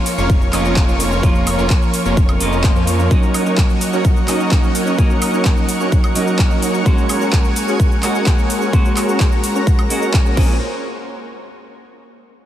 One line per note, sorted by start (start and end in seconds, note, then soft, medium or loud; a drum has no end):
0.00 0.50 F3 medium
0.00 0.50 A#3 medium
0.00 0.50 C#4 medium
0.00 0.51 F4 loud
0.00 10.33 A#4 medium
0.00 3.07 C#5 medium
0.00 3.07 F5 medium
0.00 3.07 C#6 medium
0.06 open hi-hat loud
0.06 shaker medium
0.18 0.51 F1 loud
0.18 0.31 A#3 medium
0.18 0.31 C#4 medium
0.18 0.31 F4 medium
0.18 0.31 A#4 medium
0.18 0.31 C#5 loud
0.18 shaker soft
0.30 kick loud
0.30 shaker soft
0.42 shaker soft
0.52 0.86 F1 loud
0.52 1.20 F3 medium
0.52 1.20 A#3 medium
0.52 0.85 A#3 medium
0.52 0.85 C#4 medium
0.52 1.21 C#4 medium
0.52 0.85 F4 medium
0.52 1.21 F4 medium
0.52 0.85 A#4 medium
0.52 0.85 D#5 medium
0.52 clap medium
0.52 open hi-hat loud
0.52 high woodblock medium
0.52 shaker medium
0.65 shaker soft
0.76 kick loud
0.76 clap loud
0.76 shaker soft
0.88 1.21 F1 medium
0.88 1.21 A#3 medium
0.88 1.21 C#4 medium
0.88 1.21 F4 medium
0.88 1.21 A#4 medium
0.88 1.21 C#5 medium
0.88 shaker soft
1.00 open hi-hat loud
1.00 shaker medium
1.12 shaker soft
1.22 1.56 F1 loud
1.22 2.37 F3 medium
1.22 2.38 A#3 medium
1.22 1.56 A#3 medium
1.22 1.56 C#4 medium
1.22 2.38 C#4 medium
1.22 1.56 F4 medium
1.22 2.38 F4 loud
1.22 1.56 A#4 medium
1.22 1.56 C#5 medium
1.22 kick loud
1.22 shaker soft
1.35 shaker soft
1.47 open hi-hat loud
1.47 high woodblock medium
1.47 shaker medium
1.58 1.69 F1 medium
1.58 1.71 A#3 medium
1.58 1.71 C#4 medium
1.58 1.71 F4 medium
1.58 1.71 A#4 medium
1.58 1.71 C#5 medium
1.58 shaker soft
1.70 kick loud
1.70 clap loud
1.70 shaker soft
1.82 shaker soft
1.94 open hi-hat medium
1.94 shaker medium
2.05 2.38 F1 loud
2.05 2.18 A#3 medium
2.05 2.18 C#4 medium
2.05 2.18 F4 medium
2.05 2.18 A#4 medium
2.05 2.18 C#5 loud
2.05 shaker soft
2.17 kick loud
2.17 shaker soft
2.29 high woodblock medium
2.29 shaker soft
2.39 2.73 F1 loud
2.39 3.08 F3 medium
2.39 3.08 A#3 medium
2.39 2.73 A#3 medium
2.39 2.73 C#4 medium
2.39 3.08 C#4 medium
2.39 2.73 F4 medium
2.39 3.09 F4 loud
2.39 2.73 A#4 medium
2.39 2.73 D#5 medium
2.39 open hi-hat loud
2.39 shaker medium
2.52 shaker soft
2.64 kick loud
2.64 clap loud
2.64 shaker soft
2.76 3.09 F2 loud
2.76 3.08 A#3 medium
2.76 3.08 C#4 medium
2.76 3.08 F4 medium
2.76 3.08 A#4 medium
2.76 3.08 C#5 medium
2.76 shaker soft
2.87 open hi-hat medium
2.87 shaker medium
2.99 shaker soft
3.10 4.25 F#3 medium
3.10 4.25 A#3 medium
3.10 3.43 C#4 medium
3.10 4.26 C#4 medium
3.10 3.43 D#4 medium
3.10 4.26 D#4 loud
3.10 3.43 F#4 medium
3.10 3.43 A#4 medium
3.10 3.43 C#5 medium
3.10 6.82 D#5 medium
3.10 10.33 F#5 medium
3.10 10.34 C#6 medium
3.10 kick loud
3.10 shaker soft
3.23 shaker soft
3.34 open hi-hat loud
3.34 high woodblock medium
3.34 shaker medium
3.46 3.59 C#4 medium
3.46 3.59 D#4 medium
3.46 3.59 F#4 medium
3.46 3.59 A#4 medium
3.46 3.59 C#5 medium
3.46 shaker soft
3.58 kick loud
3.58 clap loud
3.58 shaker soft
3.70 shaker soft
3.81 open hi-hat medium
3.81 shaker medium
3.93 4.06 C#4 medium
3.93 4.06 D#4 medium
3.93 4.06 F#4 medium
3.93 4.06 A#4 medium
3.93 4.06 C#5 medium
3.93 shaker soft
4.05 kick loud
4.05 shaker soft
4.17 shaker soft
4.27 4.95 F#3 medium
4.27 4.95 A#3 medium
4.27 4.61 C#4 medium
4.27 4.96 C#4 medium
4.27 4.61 D#4 medium
4.27 4.96 D#4 medium
4.27 4.61 F#4 medium
4.27 4.61 A#4 medium
4.27 4.61 D#5 medium
4.27 clap medium
4.27 open hi-hat loud
4.27 high woodblock medium
4.27 shaker medium
4.40 shaker soft
4.51 kick loud
4.51 clap loud
4.51 shaker soft
4.63 4.96 C#4 medium
4.63 4.96 D#4 medium
4.63 4.96 F#4 medium
4.63 4.96 A#4 medium
4.63 4.96 C#5 medium
4.63 shaker soft
4.75 open hi-hat medium
4.75 shaker medium
4.87 shaker soft
4.97 6.12 F#3 medium
4.97 6.13 A#3 medium
4.97 5.31 C#4 medium
4.97 6.13 C#4 medium
4.97 5.31 D#4 medium
4.97 6.14 D#4 medium
4.97 5.31 F#4 medium
4.97 5.31 A#4 medium
4.97 5.31 C#5 medium
4.97 kick loud
4.97 shaker soft
5.10 shaker soft
5.22 open hi-hat loud
5.22 high woodblock medium
5.22 shaker medium
5.34 5.46 C#4 medium
5.34 5.46 D#4 medium
5.34 5.46 F#4 medium
5.34 5.46 A#4 medium
5.34 5.46 C#5 medium
5.34 shaker soft
5.45 kick loud
5.45 clap loud
5.45 shaker soft
5.57 shaker soft
5.69 open hi-hat medium
5.69 shaker medium
5.80 5.93 C#4 medium
5.80 5.93 D#4 medium
5.80 5.93 F#4 medium
5.80 5.93 A#4 medium
5.80 5.93 C#5 loud
5.80 shaker soft
5.92 kick loud
5.92 shaker soft
6.04 high woodblock medium
6.04 shaker soft
6.14 6.83 F#3 medium
6.14 6.83 A#3 medium
6.14 6.48 C#4 medium
6.14 6.83 C#4 medium
6.14 6.48 D#4 medium
6.14 6.84 D#4 medium
6.14 6.48 F#4 medium
6.14 6.48 A#4 medium
6.14 6.48 D#5 medium
6.14 open hi-hat loud
6.14 shaker medium
6.27 shaker soft
6.39 kick loud
6.39 clap loud
6.39 shaker soft
6.51 6.83 C#4 medium
6.51 6.83 D#4 medium
6.51 6.83 F#4 medium
6.51 6.83 A#4 medium
6.51 6.83 C#5 medium
6.51 shaker soft
6.62 open hi-hat medium
6.62 shaker medium
6.74 shaker soft
6.85 8.00 G#3 medium
6.85 8.00 A#3 medium
6.85 8.01 C#4 medium
6.85 7.18 F#4 medium
6.85 8.01 F#4 loud
6.85 7.18 G#4 medium
6.85 8.72 G#5 medium
6.85 kick loud
6.85 shaker soft
6.98 shaker soft
7.09 open hi-hat medium
7.09 high woodblock medium
7.09 shaker medium
7.21 7.34 C#4 medium
7.21 7.34 F#4 medium
7.21 7.34 G#4 medium
7.21 7.34 A#4 medium
7.21 7.34 C#5 medium
7.21 shaker soft
7.33 kick loud
7.33 clap loud
7.33 shaker soft
7.45 shaker soft
7.56 open hi-hat medium
7.56 shaker medium
7.68 7.81 C#4 medium
7.68 7.81 F#4 medium
7.68 7.81 G#4 medium
7.68 7.81 A#4 medium
7.68 7.81 C#5 medium
7.68 shaker soft
7.80 kick loud
7.80 shaker soft
7.92 shaker soft
8.02 8.70 G#3 medium
8.02 8.71 A#3 medium
8.02 8.36 C#4 medium
8.02 8.71 C#4 medium
8.02 8.36 F#4 medium
8.02 8.71 F#4 medium
8.02 8.36 G#4 medium
8.02 8.36 A#4 medium
8.02 8.36 D#5 medium
8.02 clap medium
8.02 open hi-hat loud
8.02 high woodblock medium
8.02 shaker medium
8.15 shaker soft
8.26 kick loud
8.26 clap loud
8.26 shaker soft
8.38 8.71 C#4 medium
8.38 8.71 F#4 medium
8.38 8.71 G#4 medium
8.38 8.71 A#4 medium
8.38 8.71 C#5 medium
8.38 shaker soft
8.50 open hi-hat medium
8.50 shaker medium
8.62 shaker soft
8.72 9.87 G#3 medium
8.72 9.88 A#3 medium
8.72 9.06 C#4 medium
8.72 9.88 C#4 medium
8.72 9.06 F#4 medium
8.72 9.88 F#4 loud
8.72 9.06 G#4 medium
8.72 9.06 A#4 medium
8.72 9.06 C#5 medium
8.72 10.36 A#5 medium
8.72 kick loud
8.72 shaker soft
8.85 shaker soft
8.97 clap medium
8.97 open hi-hat loud
8.97 high woodblock medium
8.97 shaker medium
9.09 9.21 C#4 medium
9.09 9.21 F#4 medium
9.09 9.21 G#4 medium
9.09 9.21 A#4 medium
9.09 9.21 C#5 loud
9.09 shaker soft
9.20 kick loud
9.20 clap loud
9.20 shaker soft
9.32 shaker soft
9.44 open hi-hat medium
9.44 shaker medium
9.55 9.68 C#4 medium
9.55 9.68 F#4 medium
9.55 9.68 G#4 medium
9.55 9.68 A#4 medium
9.55 9.68 C#5 medium
9.55 shaker soft
9.67 kick loud
9.67 shaker soft
9.79 high woodblock medium
9.79 shaker soft
9.89 10.37 G#3 medium
9.89 10.34 A#3 medium
9.89 10.23 C#4 medium
9.89 10.37 C#4 medium
9.89 10.23 F#4 medium
9.89 10.38 F#4 medium
9.89 10.23 G#4 medium
9.89 10.23 A#4 medium
9.89 10.23 D#5 medium
9.89 open hi-hat loud
9.89 shaker medium
10.02 shaker soft
10.14 kick loud
10.14 clap loud
10.14 shaker soft
10.26 10.36 C#4 medium
10.26 10.38 F#4 medium
10.26 10.36 G#4 medium
10.26 10.36 A#4 medium
10.26 10.38 C#5 medium
10.26 shaker soft
10.36 10.59 A#1 loud
10.36 10.54 A#3 medium
10.36 10.59 A#3 medium
10.36 10.55 C4 medium
10.36 10.55 C#4 medium
10.36 10.55 F4 medium
10.36 10.55 G#4 medium
10.36 10.59 G#4 medium
10.36 10.56 G#4 loud
10.36 10.59 C5 medium
10.36 10.55 C5 medium
10.36 10.59 C#5 medium
10.36 kick loud
10.36 crash medium